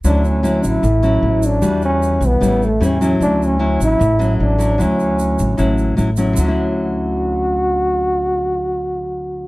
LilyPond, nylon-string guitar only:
\new Staff \with { instrumentName = "Nylon-string guitar" } { \time 4/4 \key d \major \tempo 4 = 152 << { <fis cis' e'>4 <fis cis' e'>4 r8 <fis cis' e'>4. | <g fis'>2 <g cis' e'>8 r8 <g cis' e'>8 <fis cis' e'>8~ | <fis cis' e'>4 <fis cis' e'>4 r8 <fis cis' e'>4 <fis cis' e'>8 | <fis cis' e'>2 <fis cis' e'>4 <fis cis' e'>8 <fis cis' e'>8~ |
<fis cis' e'>4 r2. | r1 | } \\ { d2 a,2 | e2 a,2 | d2 a,2 | d2 a,2 |
<d fis cis' e'>1~ | <d fis cis' e'>1 | } >> }